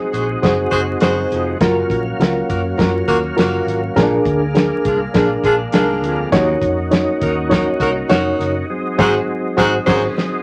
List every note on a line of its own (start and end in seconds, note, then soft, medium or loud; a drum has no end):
0.00 1.56 G#3 medium
0.00 1.58 C4 medium
0.00 1.58 D#4 medium
0.00 0.27 F#4 medium
0.00 1.58 F#4 medium
0.00 0.28 G#4 medium
0.00 0.28 C5 medium
0.12 0.35 A#1 medium
0.12 0.25 F#4 medium
0.12 0.25 G#4 medium
0.12 0.25 C5 medium
0.12 closed hi-hat medium
0.42 0.65 F#1 medium
0.42 0.55 F#4 medium
0.42 0.86 F#4 medium
0.42 0.86 G#4 medium
0.42 0.55 G#4 medium
0.42 0.86 C5 medium
0.42 0.55 C5 medium
0.42 kick medium
0.42 snare loud
0.42 closed hi-hat medium
0.71 0.94 F#1 medium
0.71 0.80 F#4 medium
0.71 0.81 G#4 medium
0.71 0.81 C5 loud
0.71 kick medium
0.71 closed hi-hat medium
1.00 1.23 F#1 medium
1.00 1.25 F#2 medium
1.00 1.43 F#4 medium
1.00 1.46 F#4 medium
1.00 1.43 G#4 medium
1.00 1.46 G#4 medium
1.00 1.43 C5 medium
1.00 1.46 C5 medium
1.00 snare loud
1.00 closed hi-hat medium
1.31 1.53 F1 medium
1.31 1.54 F2 medium
1.31 closed hi-hat medium
1.59 1.83 F#1 loud
1.59 1.84 F#2 medium
1.59 3.94 F#3 medium
1.59 8.65 A#3 medium
1.59 3.94 C#4 medium
1.59 2.05 F4 loud
1.59 2.05 F#4 medium
1.59 2.05 A#4 loud
1.59 6.29 F5 medium
1.59 kick loud
1.59 snare loud
1.59 closed hi-hat medium
1.90 2.12 A#1 medium
1.90 kick medium
1.90 closed hi-hat medium
2.19 2.41 C#2 medium
2.19 2.64 F4 medium
2.19 2.64 F#4 medium
2.19 2.64 A#4 medium
2.19 snare loud
2.19 closed hi-hat medium
2.48 2.71 F#2 medium
2.48 2.61 A#3 medium
2.48 2.62 F#4 medium
2.48 2.61 A#4 medium
2.48 kick medium
2.48 closed hi-hat medium
2.78 3.01 F#2 medium
2.78 2.90 A#3 medium
2.78 3.23 F4 medium
2.78 2.91 F#4 medium
2.78 3.23 F#4 medium
2.78 2.91 A#4 medium
2.78 3.23 A#4 medium
2.78 kick loud
2.78 snare loud
2.78 closed hi-hat medium
3.07 3.30 D#2 medium
3.07 3.17 A#3 medium
3.07 3.17 F#4 medium
3.07 3.17 A#4 loud
3.07 kick medium
3.07 closed hi-hat medium
3.37 3.59 F#1 medium
3.37 3.80 A#3 medium
3.37 3.81 F4 medium
3.37 3.81 F#4 medium
3.37 3.80 F#4 medium
3.37 3.81 A#4 medium
3.37 3.80 A#4 medium
3.37 snare loud
3.37 closed hi-hat medium
3.66 3.89 G#1 medium
3.66 closed hi-hat medium
3.96 4.19 A#1 loud
3.96 4.20 A#2 medium
3.96 6.30 G#3 medium
3.96 4.03 C#4 medium
3.96 6.31 D4 medium
3.96 4.40 G#4 medium
3.96 4.40 A#4 loud
3.96 kick loud
3.96 snare loud
3.96 closed hi-hat loud
4.03 4.44 D4 loud
4.25 4.70 D2 loud
4.25 kick medium
4.25 closed hi-hat medium
4.55 4.99 D4 medium
4.55 4.99 G#4 medium
4.55 4.99 A#4 medium
4.55 snare loud
4.55 closed hi-hat medium
4.85 5.07 C2 medium
4.85 4.98 D4 medium
4.85 4.98 F4 medium
4.85 4.98 G#4 medium
4.85 kick medium
4.85 closed hi-hat medium
5.14 5.37 A#1 medium
5.14 5.58 D4 medium
5.14 5.28 D4 medium
5.14 5.27 F4 medium
5.14 5.58 G#4 medium
5.14 5.27 G#4 medium
5.14 5.58 A#4 medium
5.14 kick loud
5.14 snare loud
5.14 closed hi-hat medium
5.44 5.66 A#1 medium
5.44 5.54 D4 medium
5.44 5.54 F4 medium
5.44 5.54 G#4 medium
5.44 kick medium
5.44 closed hi-hat medium
5.72 6.03 C2 medium
5.72 5.97 G#2 medium
5.72 6.15 D4 medium
5.72 6.18 D4 medium
5.72 6.15 F4 medium
5.72 6.15 G#4 medium
5.72 6.18 G#4 medium
5.72 6.18 A#4 medium
5.72 snare loud
5.72 closed hi-hat medium
6.03 6.25 D2 medium
6.03 6.27 F2 medium
6.03 closed hi-hat medium
6.31 6.56 D#2 medium
6.31 6.55 D#2 loud
6.31 8.66 C#4 medium
6.31 10.43 D#4 medium
6.31 6.77 D#4 loud
6.31 8.66 F#4 medium
6.31 6.77 F#4 loud
6.31 6.77 C#5 loud
6.31 kick loud
6.31 snare loud
6.31 closed hi-hat medium
6.62 7.06 F2 medium
6.62 kick medium
6.62 closed hi-hat medium
6.91 7.35 D#4 medium
6.91 7.36 F#4 medium
6.91 7.36 C#5 medium
6.91 snare loud
6.91 closed hi-hat medium
7.21 7.66 D#2 medium
7.21 7.34 D#4 medium
7.21 7.34 F#4 medium
7.21 7.34 A#4 medium
7.21 kick medium
7.21 closed hi-hat medium
7.50 7.94 D#4 medium
7.50 7.64 D#4 medium
7.50 7.94 F#4 medium
7.50 7.64 F#4 medium
7.50 7.64 A#4 medium
7.50 7.95 C#5 medium
7.50 kick loud
7.50 snare loud
7.50 closed hi-hat medium
7.80 8.03 C2 medium
7.80 7.91 D#4 medium
7.80 7.90 F#4 medium
7.80 7.90 A#4 loud
7.80 kick medium
7.80 closed hi-hat medium
8.09 8.32 F1 medium
8.09 8.52 D#4 medium
8.09 8.54 D#4 medium
8.09 8.52 F#4 medium
8.09 8.54 F#4 medium
8.09 8.52 A#4 medium
8.09 8.54 C#5 loud
8.09 snare loud
8.09 closed hi-hat medium
8.39 8.61 F#1 medium
8.39 snare soft
8.39 closed hi-hat medium
8.70 10.43 F#3 medium
8.70 10.43 G#3 medium
8.70 10.43 C4 medium
8.98 9.19 G#1 loud
8.98 9.13 G#2 medium
8.98 9.19 F#4 loud
8.98 9.15 F#4 loud
8.98 9.19 G#4 loud
8.98 9.14 G#4 loud
8.98 9.19 C5 loud
8.98 9.14 C5 loud
8.98 kick loud
8.98 snare loud
8.98 crash medium
9.57 9.78 G#1 loud
9.57 9.72 G#2 medium
9.57 9.77 F#4 medium
9.57 9.73 F#4 loud
9.57 9.78 G#4 medium
9.57 9.73 G#4 medium
9.57 9.78 C5 medium
9.57 9.73 C5 loud
9.57 kick loud
9.57 snare loud
9.86 10.08 G#1 loud
9.86 10.03 F#2 medium
9.86 10.02 F#4 medium
9.86 10.07 F#4 medium
9.86 10.02 G#4 medium
9.86 10.07 G#4 medium
9.86 10.02 C5 medium
9.86 10.07 C5 loud
9.86 kick loud
9.86 snare loud
9.86 crash medium
10.18 snare medium